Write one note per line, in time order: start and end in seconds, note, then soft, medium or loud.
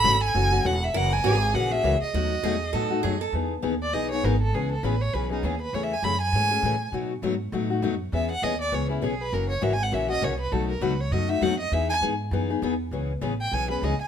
0.00 0.94 A4 medium
0.00 0.21 B5 loud
0.04 0.33 G#1 medium
0.04 0.15 C#3 medium
0.04 0.15 E3 medium
0.04 0.15 A3 medium
0.04 0.15 C#4 medium
0.04 0.15 F#4 medium
0.24 0.68 G#5 loud
0.34 0.63 F#1 medium
0.34 0.51 C#3 medium
0.34 0.51 E3 medium
0.34 0.51 A3 medium
0.34 0.51 C#4 medium
0.34 0.51 F#4 medium
0.52 0.64 A3 soft
0.52 0.64 C#4 medium
0.52 0.64 F#4 medium
0.64 0.93 E1 medium
0.64 0.75 C#3 medium
0.64 0.75 E3 medium
0.64 0.75 A3 medium
0.64 0.75 C#4 medium
0.64 0.75 F#4 loud
0.64 0.85 F#5 medium
0.84 0.98 E5 medium
0.94 1.23 F#1 medium
0.94 1.13 C#3 medium
0.94 1.13 E3 medium
0.94 1.13 A#3 medium
0.94 1.13 C#4 medium
0.94 1.14 F#4 medium
0.94 1.23 A#4 medium
0.94 1.15 F#5 loud
1.13 1.56 G#5 loud
1.24 1.53 G#1 medium
1.24 1.35 C#3 medium
1.24 1.35 E3 medium
1.24 1.35 A#3 loud
1.24 1.35 C#4 loud
1.24 1.35 F#4 loud
1.24 2.16 G#4 medium
1.53 1.83 A#1 medium
1.53 1.70 C#3 medium
1.53 1.70 E3 medium
1.53 1.71 A#3 medium
1.53 1.71 C#4 medium
1.53 1.70 F#4 medium
1.53 1.73 F#5 medium
1.71 1.83 A#3 soft
1.71 1.83 C#4 soft
1.71 1.83 F#4 medium
1.71 2.02 E5 loud
1.83 2.00 C#2 medium
1.83 1.94 C#3 medium
1.83 1.94 E3 medium
1.83 1.94 A#3 medium
1.83 1.94 C#4 medium
1.83 1.95 F#4 medium
2.03 3.18 D#5 medium
2.14 2.42 D#2 medium
2.14 2.33 B2 medium
2.14 2.33 F#3 medium
2.14 2.33 A3 medium
2.14 2.33 D#4 medium
2.14 2.45 F#4 medium
2.14 2.34 F#4 medium
2.43 2.72 E2 medium
2.43 2.55 B2 medium
2.43 2.55 F#3 medium
2.43 2.55 A3 loud
2.43 2.55 D#4 medium
2.43 2.55 F#4 loud
2.43 2.72 G#4 medium
2.73 3.02 A2 medium
2.73 2.91 B2 medium
2.73 2.90 F#3 medium
2.73 2.91 A3 medium
2.73 2.91 D#4 medium
2.73 2.89 F#4 medium
2.73 3.01 A4 medium
2.90 3.03 A3 soft
2.90 3.03 D#4 soft
2.90 3.03 F#4 medium
3.03 3.32 F#2 medium
3.03 3.14 B2 medium
3.03 3.14 F#3 medium
3.03 3.14 A3 medium
3.03 3.14 D#4 medium
3.03 3.14 F#4 medium
3.03 3.21 G#4 medium
3.21 3.33 A4 medium
3.33 3.62 E2 medium
3.33 3.53 E3 medium
3.33 3.53 B3 medium
3.33 3.53 D#4 medium
3.33 3.53 G#4 medium
3.62 3.92 D#2 medium
3.62 3.73 E3 medium
3.62 3.73 B3 medium
3.62 3.74 D#4 medium
3.62 3.74 G#4 medium
3.83 3.95 D5 medium
3.93 4.22 B1 medium
3.93 4.10 E3 medium
3.93 4.10 B3 medium
3.93 4.10 D#4 medium
3.93 4.10 G#4 medium
3.93 4.11 D#5 medium
4.12 4.23 B3 soft
4.12 4.24 D#4 soft
4.12 4.23 G#4 medium
4.12 4.26 C#5 medium
4.23 4.52 G#1 medium
4.23 4.34 E3 medium
4.23 4.34 B3 medium
4.23 4.35 D#4 medium
4.23 4.35 G#4 medium
4.23 4.41 A#4 medium
4.42 4.56 A4 medium
4.53 4.82 C#2 medium
4.53 4.73 C#3 medium
4.53 4.73 E3 medium
4.53 4.73 B3 medium
4.53 4.73 C#4 medium
4.53 4.71 G#4 medium
4.53 4.73 G#4 medium
4.72 4.85 A4 medium
4.83 5.12 A1 medium
4.83 4.94 C#3 medium
4.83 4.94 E3 medium
4.83 4.94 B3 medium
4.83 4.94 C#4 medium
4.83 4.95 G#4 medium
4.83 5.03 B4 medium
5.01 5.15 C#5 loud
5.13 5.42 B1 medium
5.13 5.30 C#3 medium
5.13 5.31 E3 medium
5.13 5.31 B3 medium
5.13 5.31 C#4 medium
5.13 5.30 G#4 medium
5.13 5.31 B4 medium
5.31 5.43 B3 soft
5.31 5.43 C#4 soft
5.31 5.46 D#4 medium
5.31 5.43 G#4 medium
5.43 5.72 D#2 medium
5.43 5.54 C#3 medium
5.43 5.54 E3 medium
5.43 5.54 B3 medium
5.43 5.54 C#4 medium
5.43 5.61 G#4 medium
5.43 5.55 G#4 medium
5.62 5.75 B4 medium
5.73 6.02 E2 medium
5.73 5.93 C#3 medium
5.73 5.93 E3 medium
5.73 5.93 A3 medium
5.73 5.93 C#4 medium
5.73 5.93 G#4 medium
5.73 5.85 C#5 medium
5.83 5.95 E5 medium
5.93 6.05 G#5 medium
6.02 6.32 F#2 medium
6.02 6.14 C#3 medium
6.02 6.14 E3 medium
6.02 6.14 A3 medium
6.02 6.14 C#4 loud
6.02 6.15 G#4 medium
6.02 6.21 B5 medium
6.22 6.90 G#5 loud
6.33 6.62 G#2 medium
6.33 6.50 C#3 medium
6.33 6.50 E3 medium
6.33 6.51 A3 medium
6.33 6.51 C#4 medium
6.33 6.50 G#4 medium
6.51 6.63 A3 soft
6.51 6.63 C#4 medium
6.51 6.63 G#4 medium
6.63 6.91 A2 medium
6.63 6.74 C#3 medium
6.63 6.74 E3 medium
6.63 6.74 A3 medium
6.63 6.75 C#4 medium
6.63 6.75 G#4 medium
6.92 7.22 B2 medium
6.92 7.12 B2 medium
6.92 7.12 F#3 medium
6.92 7.12 A3 medium
6.92 7.13 D#4 medium
6.92 7.13 F#4 medium
7.22 7.52 G#2 medium
7.22 7.33 B2 medium
7.22 7.33 F#3 medium
7.22 7.34 A3 medium
7.22 7.34 D#4 medium
7.22 7.34 F#4 loud
7.52 7.82 A2 medium
7.52 7.69 B2 medium
7.52 7.70 F#3 medium
7.52 7.70 A3 medium
7.52 7.70 D#4 medium
7.52 7.69 F#4 medium
7.70 7.82 A3 soft
7.70 7.82 D#4 soft
7.70 7.82 F#4 medium
7.82 8.12 F#2 medium
7.82 7.93 B2 medium
7.82 7.93 F#3 medium
7.82 7.94 A3 medium
7.82 7.94 D#4 medium
7.82 7.94 F#4 medium
8.12 8.42 E2 medium
8.12 8.32 E3 medium
8.12 8.32 B3 medium
8.12 8.32 C#4 medium
8.12 8.32 G#4 medium
8.12 8.29 E5 medium
8.31 8.45 F#5 loud
8.42 8.71 D#2 medium
8.42 8.53 E3 medium
8.42 8.53 B3 medium
8.42 8.54 C#4 medium
8.42 8.54 G#4 loud
8.42 8.61 D#5 medium
8.61 8.76 D5 medium
8.72 9.01 C#2 medium
8.72 8.89 E3 medium
8.72 8.89 B3 medium
8.72 8.89 C#4 medium
8.72 8.88 G#4 medium
8.72 8.91 C#5 medium
8.89 9.01 B3 soft
8.89 9.01 C#4 medium
8.89 9.06 E4 soft
8.89 9.02 G#4 medium
9.02 9.32 B1 medium
9.02 9.13 E3 medium
9.02 9.13 B3 medium
9.02 9.13 C#4 medium
9.02 9.13 G#4 loud
9.02 9.23 G#4 medium
9.21 9.35 B4 loud
9.33 9.61 F#1 medium
9.33 9.52 C#3 medium
9.33 9.52 E3 medium
9.33 9.52 A#3 medium
9.33 9.52 C#4 medium
9.33 9.52 F#4 medium
9.33 9.49 A#4 medium
9.50 9.64 C#5 medium
9.61 9.91 G#1 medium
9.61 9.72 C#3 medium
9.61 9.72 E3 medium
9.61 9.73 A#3 medium
9.61 9.73 C#4 loud
9.61 9.73 F#4 loud
9.61 9.75 E5 medium
9.73 9.84 G#5 loud
9.83 9.95 F#5 medium
9.91 10.21 A#1 medium
9.91 10.08 C#3 medium
9.91 10.09 E3 medium
9.91 10.09 A#3 medium
9.91 10.08 C#4 medium
9.91 10.07 F#4 medium
9.91 10.10 E5 medium
10.08 10.21 A#3 soft
10.08 10.21 C#4 soft
10.08 10.21 F#4 medium
10.08 10.26 D#5 medium
10.21 10.51 C2 medium
10.21 10.32 C#3 medium
10.21 10.33 E3 medium
10.21 10.33 A#3 loud
10.21 10.33 C#4 medium
10.21 10.33 F#4 loud
10.21 10.40 C#5 medium
10.40 10.54 B4 medium
10.52 10.81 B1 medium
10.52 10.71 B2 medium
10.52 10.71 F#3 medium
10.52 10.72 A3 medium
10.52 10.72 D#4 medium
10.52 10.72 F#4 medium
10.52 10.69 A4 medium
10.70 10.84 A#4 medium
10.81 11.10 C#2 loud
10.81 10.92 B2 medium
10.81 10.93 F#3 medium
10.81 10.92 A3 loud
10.81 10.93 D#4 loud
10.81 10.93 F#4 loud
10.81 11.02 B4 medium
11.00 11.14 C#5 medium
11.11 11.40 F#2 medium
11.11 11.29 B2 medium
11.11 11.29 F#3 medium
11.11 11.29 A3 medium
11.11 11.28 D#4 medium
11.11 11.27 F#4 medium
11.11 11.31 D#5 medium
11.28 11.41 A3 medium
11.28 11.41 D#4 medium
11.28 11.41 F#4 medium
11.28 11.44 E5 loud
11.41 11.71 F2 medium
11.41 11.52 B2 medium
11.41 11.52 F#3 medium
11.41 11.53 A3 medium
11.41 11.53 D#4 loud
11.41 11.53 F#4 loud
11.41 11.59 F#5 medium
11.60 11.75 D#5 medium
11.71 12.01 E2 medium
11.71 11.91 E3 medium
11.71 11.92 B3 medium
11.71 11.92 D#4 medium
11.71 11.92 G#4 medium
11.71 11.89 E5 medium
11.90 11.97 G#5 loud
12.01 12.31 G#2 medium
12.01 12.13 E3 medium
12.01 12.13 B3 medium
12.01 12.13 D#4 medium
12.01 12.13 G#4 loud
12.31 12.61 F#2 medium
12.31 12.49 E3 medium
12.31 12.49 B3 medium
12.31 12.49 D#4 medium
12.31 12.49 G#4 medium
12.50 12.62 B3 soft
12.50 12.62 D#4 medium
12.50 12.62 G#4 medium
12.62 12.91 E2 medium
12.62 12.73 E3 medium
12.62 12.73 B3 medium
12.62 12.73 D#4 medium
12.62 12.73 G#4 loud
12.91 13.21 C#2 medium
12.91 13.11 C#3 medium
12.91 13.11 E3 medium
12.91 13.12 B3 medium
12.91 13.12 C#4 medium
12.91 13.12 G#4 medium
13.21 13.51 A1 medium
13.21 13.32 C#3 medium
13.21 13.32 E3 medium
13.21 13.33 B3 medium
13.21 13.33 C#4 medium
13.21 13.33 G#4 medium
13.41 13.55 G5 medium
13.52 13.81 B1 medium
13.52 13.69 C#3 medium
13.52 13.69 E3 medium
13.52 13.69 B3 medium
13.52 13.69 C#4 medium
13.52 13.68 G#4 medium
13.52 13.70 G#5 loud
13.69 13.82 B3 soft
13.69 13.82 C#4 soft
13.69 13.81 G#4 medium
13.69 13.85 B4 medium
13.82 13.98 C#2 medium
13.82 13.93 C#3 medium
13.82 13.93 E3 medium
13.82 13.93 B3 medium
13.82 13.93 C#4 medium
13.82 13.94 G#4 medium
13.82 14.01 D#5 medium
14.02 14.08 G#5 loud